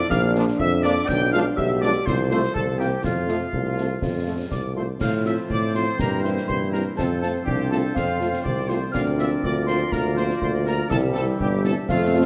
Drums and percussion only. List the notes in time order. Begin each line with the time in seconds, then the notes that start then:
0.11 concert bass drum, snare
0.35 snare
0.48 snare
0.59 concert bass drum
0.84 snare
1.09 concert bass drum, snare, crash
1.34 snare
1.58 concert bass drum
1.83 snare
2.07 concert bass drum, snare
2.31 snare
2.43 snare
2.56 concert bass drum
2.81 snare
3.04 concert bass drum, snare
3.29 snare
3.53 concert bass drum
3.78 snare
4.02 concert bass drum, snare
4.52 concert bass drum, snare
5.01 concert bass drum, snare, crash
5.26 snare
5.50 concert bass drum
5.75 snare
5.99 concert bass drum, snare
6.25 snare
6.37 snare
6.50 concert bass drum
6.74 snare
6.99 concert bass drum, snare
7.23 snare
7.47 concert bass drum
7.72 snare
7.96 concert bass drum, snare
8.21 snare
8.33 snare
8.46 concert bass drum
8.70 snare
8.95 concert bass drum, snare, crash
9.19 snare
9.44 concert bass drum
9.67 snare
9.92 concert bass drum, snare
10.17 snare
10.30 snare
10.42 concert bass drum
10.67 snare
10.91 concert bass drum, snare
11.15 snare
11.40 concert bass drum
11.65 snare
11.89 concert bass drum, snare